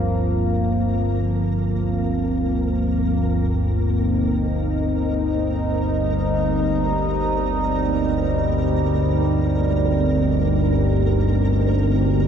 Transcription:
0.00 12.28 G1 medium
0.00 12.28 D2 medium
0.00 3.97 G2 medium
0.00 3.98 F3 medium
0.00 8.07 A#3 medium
0.00 12.28 A#3 medium
0.00 12.28 C4 medium
0.00 12.28 A#4 medium
3.98 12.28 D#4 medium
5.24 12.28 G3 medium

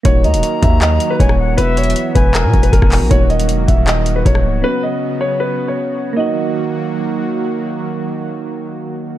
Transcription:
0.03 0.26 D#1 loud
0.03 1.56 D#3 medium
0.03 1.56 F#3 medium
0.03 1.54 A#3 medium
0.03 1.56 A#3 medium
0.03 1.55 D#4 medium
0.03 6.13 F#4 medium
0.03 1.56 F#4 medium
0.03 0.22 C#5 loud
0.03 kick loud
0.03 closed hi-hat medium
0.24 0.35 D#2 loud
0.24 0.60 D#5 medium
0.24 1.16 A#5 medium
0.24 closed hi-hat soft
0.34 0.43 D#1 loud
0.34 closed hi-hat medium
0.43 closed hi-hat medium
0.62 0.99 D#2 loud
0.62 0.79 E5 medium
0.62 kick loud
0.62 closed hi-hat medium
0.82 1.09 D#5 medium
0.82 cross-stick medium
0.82 clap loud
0.82 closed hi-hat medium
1.00 closed hi-hat medium
1.10 1.19 B4 medium
1.20 1.56 D#1 loud
1.20 1.56 C#5 medium
1.20 1.38 G#5 medium
1.20 kick loud
1.20 closed hi-hat medium
1.29 cross-stick loud
1.39 1.57 F#5 medium
1.56 1.95 E1 loud
1.56 3.09 E3 medium
1.56 6.13 F#3 medium
1.56 3.07 B3 medium
1.56 3.09 B3 medium
1.56 3.08 E4 medium
1.56 3.09 F#4 medium
1.56 1.75 B4 loud
1.56 2.12 E5 loud
1.56 closed hi-hat medium
1.77 2.13 C#5 medium
1.77 closed hi-hat medium
1.84 closed hi-hat medium
1.90 closed hi-hat medium
1.96 closed hi-hat medium
2.15 2.46 E1 loud
2.15 2.32 B4 medium
2.15 3.07 G#5 medium
2.15 kick loud
2.15 closed hi-hat medium
2.34 2.61 A#4 medium
2.34 cross-stick medium
2.34 clap loud
2.34 closed hi-hat medium
2.44 2.53 B2 loud
2.53 2.72 E1 loud
2.53 kick loud
2.53 closed hi-hat soft
2.63 2.71 B4 medium
2.63 closed hi-hat medium
2.73 2.82 E1 loud
2.73 3.09 A#4 medium
2.73 kick loud
2.73 closed hi-hat medium
2.82 3.03 E1 loud
2.82 kick loud
2.82 cross-stick loud
2.92 clap loud
2.92 open hi-hat medium
3.01 3.10 B1 loud
3.09 3.51 D#1 loud
3.09 4.62 D#3 medium
3.09 4.60 A#3 medium
3.09 4.62 A#3 medium
3.09 4.61 D#4 medium
3.09 4.62 F#4 medium
3.09 3.28 C#5 loud
3.09 kick loud
3.09 closed hi-hat medium
3.30 3.66 D#5 medium
3.30 closed hi-hat soft
3.40 closed hi-hat medium
3.49 3.67 E1 loud
3.49 closed hi-hat medium
3.68 4.23 D#1 loud
3.68 3.85 E5 medium
3.68 kick loud
3.68 closed hi-hat medium
3.87 4.14 D#5 medium
3.87 cross-stick medium
3.87 clap loud
3.87 closed hi-hat medium
4.06 closed hi-hat medium
4.16 4.24 B4 medium
4.26 4.46 D#1 loud
4.26 4.62 C#5 medium
4.26 kick loud
4.26 closed hi-hat medium
4.35 cross-stick loud
4.45 4.63 C#1 loud
4.62 6.15 C#3 medium
4.62 6.13 B3 medium
4.62 6.15 B3 medium
4.62 6.13 C#4 medium
4.62 6.14 F#4 medium
4.62 4.81 B4 loud
4.83 5.19 D#5 medium
5.21 5.38 C#5 medium
5.40 5.67 B4 medium
5.68 6.13 C#5 medium
6.13 9.18 D#3 medium
6.13 9.18 F#3 medium
6.13 9.18 A#3 medium
6.13 9.18 D#4 medium
6.13 9.18 F#4 medium
6.13 7.27 D#5 medium
6.20 9.18 F#4 medium

